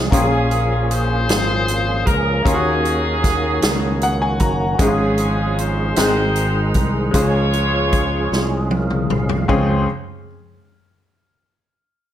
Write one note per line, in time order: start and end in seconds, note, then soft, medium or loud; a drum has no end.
0.00 0.12 G#4 medium
0.10 1.29 A#1 medium
0.10 1.25 A#2 soft
0.10 2.42 F3 medium
0.10 2.41 A#3 soft
0.10 2.42 A#3 medium
0.10 2.41 C#4 soft
0.10 2.42 C#4 medium
0.10 1.26 C#4 medium
0.10 2.42 F4 soft
0.10 0.88 F4 medium
0.10 0.86 G#4 medium
0.10 2.43 G#4 medium
0.10 kick medium
0.10 closed hi-hat medium
0.15 0.20 G4 soft
0.22 2.46 G#4 medium
0.51 closed hi-hat soft
0.90 2.02 F4 medium
0.90 2.03 G#4 medium
0.90 2.06 C5 loud
0.90 closed hi-hat soft
1.29 2.03 G#1 medium
1.29 snare medium
1.29 closed hi-hat medium
1.68 closed hi-hat soft
2.06 2.43 C#2 medium
2.06 2.45 A#4 medium
2.06 kick medium
2.06 closed hi-hat soft
2.43 3.59 D#2 medium
2.43 4.76 D#3 medium
2.43 3.58 D#3 soft
2.43 4.74 A#3 soft
2.43 4.75 A#3 medium
2.43 4.75 C#4 soft
2.43 4.76 C#4 medium
2.43 4.37 C#4 medium
2.43 4.76 D#4 soft
2.43 2.52 F4 medium
2.43 4.40 G#4 medium
2.43 kick medium
2.43 closed hi-hat medium
2.48 2.53 F4 soft
2.48 4.78 F#4 medium
2.54 4.80 F#4 medium
2.85 closed hi-hat soft
3.24 kick medium
3.24 snare soft
3.24 closed hi-hat soft
3.62 4.37 C#2 medium
3.62 snare loud
3.62 closed hi-hat medium
4.01 4.21 F#5 medium
4.01 closed hi-hat soft
4.22 4.40 G#5 medium
4.40 4.77 F#1 medium
4.40 4.77 A#5 medium
4.40 kick medium
4.40 closed hi-hat soft
4.79 5.93 G#1 medium
4.79 5.93 G#2 soft
4.79 5.97 F3 medium
4.79 5.96 G#3 soft
4.79 5.97 G#3 medium
4.79 5.97 C#4 medium
4.79 5.97 C#4 soft
4.79 5.93 C#4 medium
4.79 4.87 E4 soft
4.79 5.93 F4 medium
4.79 5.97 G#4 medium
4.79 5.54 G#4 medium
4.79 5.98 G#4 medium
4.79 kick loud
4.79 closed hi-hat medium
4.88 6.01 F4 soft
5.18 closed hi-hat soft
5.58 5.96 C5 medium
5.58 closed hi-hat soft
5.96 6.71 G#1 medium
5.96 7.11 G#2 medium
5.96 7.14 D#3 medium
5.96 7.10 G#3 medium
5.96 7.13 G#3 soft
5.96 7.15 C4 medium
5.96 7.10 D#4 medium
5.96 7.15 D#4 soft
5.96 6.03 F#4 medium
5.96 7.10 G#4 medium
5.96 7.15 G#4 medium
5.96 6.71 C5 medium
5.96 snare medium
5.96 closed hi-hat medium
6.04 7.13 G#4 medium
6.36 closed hi-hat soft
6.74 7.11 C2 medium
6.74 kick medium
6.74 closed hi-hat soft
7.11 8.28 C#2 medium
7.11 8.28 C#3 soft
7.11 9.45 F3 medium
7.11 9.44 G#3 soft
7.11 9.45 G#3 medium
7.11 9.45 C#4 soft
7.11 9.45 C#4 medium
7.11 8.67 F4 medium
7.11 9.45 F4 soft
7.11 8.67 G#4 medium
7.11 9.45 G#4 medium
7.11 8.67 C#5 loud
7.11 kick medium
7.11 closed hi-hat medium
7.16 9.46 G#4 soft
7.53 closed hi-hat soft
7.92 kick medium
7.92 closed hi-hat soft
8.32 9.06 C2 medium
8.32 snare soft
8.71 9.08 A#4 medium
8.71 high tom medium
8.90 mid tom medium
9.10 9.47 C2 medium
9.10 9.47 F5 medium
9.10 mid tom medium
9.29 floor tom medium
9.48 9.85 C#2 medium
9.48 9.86 C#2 medium
9.48 9.86 C#3 medium
9.48 9.85 F3 medium
9.48 9.85 C4 medium
9.48 9.85 C#4 medium
9.48 9.85 F4 medium
9.48 9.86 G#4 medium
9.48 9.85 C5 medium
9.48 kick medium
9.48 floor tom medium